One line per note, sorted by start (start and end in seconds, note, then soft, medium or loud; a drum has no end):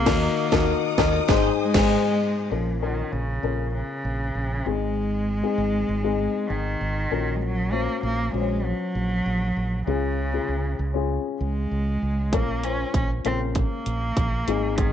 0.00 0.95 A#3 loud
0.05 0.27 D#2 loud
0.05 0.27 D#3 medium
0.05 0.27 A#3 medium
0.05 0.27 D#4 loud
0.05 0.27 D#4 medium
0.05 0.27 F#4 loud
0.05 0.28 F#4 medium
0.05 1.27 A#4 medium
0.05 0.27 A#4 loud
0.05 1.27 F#5 medium
0.05 2.49 D#6 medium
0.05 kick loud
0.05 snare loud
0.05 crash medium
0.51 0.73 D#2 loud
0.51 0.73 D#3 loud
0.51 0.73 A#3 medium
0.51 0.72 D#4 medium
0.51 0.73 D#4 medium
0.51 0.73 F#4 medium
0.51 0.74 F#4 medium
0.51 0.73 A#4 loud
0.51 kick loud
0.51 snare medium
0.98 1.19 D#2 loud
0.98 1.19 D#3 medium
0.98 1.19 A#3 loud
0.98 1.19 D#4 medium
0.98 1.19 D#4 loud
0.98 1.19 F#4 loud
0.98 1.20 F#4 medium
0.98 1.19 A#4 medium
0.98 kick loud
0.98 snare loud
1.28 1.49 G#1 loud
1.28 1.49 G#2 medium
1.28 1.50 G#2 loud
1.28 1.49 D#3 loud
1.28 1.49 G#3 loud
1.28 1.50 C4 loud
1.28 1.49 D#4 loud
1.28 1.50 D#4 loud
1.28 1.50 G#4 loud
1.28 1.50 G#4 medium
1.28 2.50 C5 medium
1.28 1.50 C5 medium
1.28 2.50 G#5 medium
1.28 kick loud
1.28 snare loud
1.61 2.53 G#3 loud
1.74 1.95 G#1 medium
1.74 1.96 G#2 loud
1.74 1.95 G#3 loud
1.74 1.96 C4 medium
1.74 1.95 D#4 loud
1.74 1.96 D#4 loud
1.74 1.96 G#4 loud
1.74 1.96 C5 medium
1.74 kick loud
1.74 snare loud
1.74 crash medium
2.50 3.02 A#1 medium
2.50 3.39 A#2 soft
2.50 2.82 F3 medium
2.50 2.75 C#4 soft
2.50 2.75 F4 soft
2.50 2.75 A#4 medium
2.81 3.14 D#3 medium
2.81 3.29 C#4 medium
2.81 3.30 F4 soft
2.81 3.30 A#4 medium
3.12 3.38 A#1 medium
3.12 3.73 C#3 medium
3.42 3.81 A#1 medium
3.42 4.39 C#4 medium
3.42 4.39 F4 soft
3.42 4.40 A#4 medium
3.74 4.67 C#3 medium
4.05 4.30 A#1 medium
4.35 4.60 A#1 medium
4.65 5.41 G#1 medium
4.65 5.54 G#2 soft
4.65 6.51 G#3 medium
4.65 5.27 C4 medium
4.65 5.27 D#4 medium
4.65 5.28 G#4 medium
5.42 5.90 C4 medium
5.42 5.91 D#4 medium
5.42 5.91 G#4 medium
5.58 5.83 G#1 medium
5.89 6.26 G#1 medium
6.03 7.00 C4 medium
6.03 7.00 D#4 medium
6.03 7.00 G#4 medium
6.50 6.75 G#1 medium
6.50 7.38 D#3 medium
6.81 7.06 G#1 medium
7.10 7.87 A#1 medium
7.10 7.99 A#2 medium
7.10 7.60 C#4 medium
7.10 7.60 F#4 medium
7.10 7.61 A#4 medium
7.36 7.43 G#3 medium
7.42 7.74 F#3 medium
7.72 8.03 A#3 medium
7.72 8.20 C#4 medium
7.72 8.21 F#4 medium
7.72 8.21 C5 medium
8.03 8.28 A#1 medium
8.03 8.32 A#3 medium
8.33 8.72 A#1 medium
8.33 8.66 G#3 medium
8.33 9.30 C#4 medium
8.33 9.30 F#4 medium
8.33 8.41 C5 soft
8.41 9.34 C#5 medium
8.65 9.87 F#3 medium
8.95 9.20 A#1 medium
9.26 9.51 A#1 medium
9.56 9.82 A#1 medium
9.87 10.38 C#2 medium
9.87 10.75 C#3 soft
9.87 11.06 C#3 medium
9.87 10.23 C#4 medium
9.87 10.23 F4 medium
9.87 10.24 G#4 medium
10.32 10.81 C#4 medium
10.32 10.81 F4 medium
10.32 10.82 G#4 medium
10.48 10.74 C#2 medium
10.79 11.17 C#2 medium
10.94 11.91 C#4 medium
10.94 11.91 F4 medium
10.94 11.91 G#4 medium
11.40 11.66 C#2 medium
11.40 12.35 G#3 medium
11.71 11.96 C#2 medium
12.02 12.33 C#2 medium
12.32 12.83 A#1 medium
12.32 13.21 A#2 soft
12.32 12.66 A#3 medium
12.32 12.57 C#4 medium
12.32 12.57 F4 medium
12.32 12.57 A#4 medium
12.32 kick medium
12.32 closed hi-hat medium
12.63 13.11 C#4 medium
12.63 12.95 C#4 medium
12.63 13.12 F4 medium
12.63 13.12 C5 medium
12.63 closed hi-hat medium
12.94 13.19 A#1 medium
12.94 13.09 C#4 medium
12.94 kick medium
12.94 closed hi-hat medium
13.24 13.63 A#1 medium
13.24 14.21 C#3 medium
13.24 13.40 C4 medium
13.24 14.21 F4 medium
13.24 14.22 A#4 medium
13.24 closed hi-hat medium
13.55 14.80 A#3 medium
13.55 kick medium
13.55 closed hi-hat medium
13.86 14.11 A#1 medium
13.86 closed hi-hat medium
14.17 14.42 A#1 medium
14.17 kick medium
14.17 closed hi-hat medium
14.47 14.93 G#1 medium
14.47 14.93 G#2 medium
14.47 14.93 C4 medium
14.47 14.93 D#4 medium
14.47 14.93 G#4 medium
14.47 closed hi-hat medium
14.78 14.93 D#3 medium
14.78 kick medium
14.78 closed hi-hat medium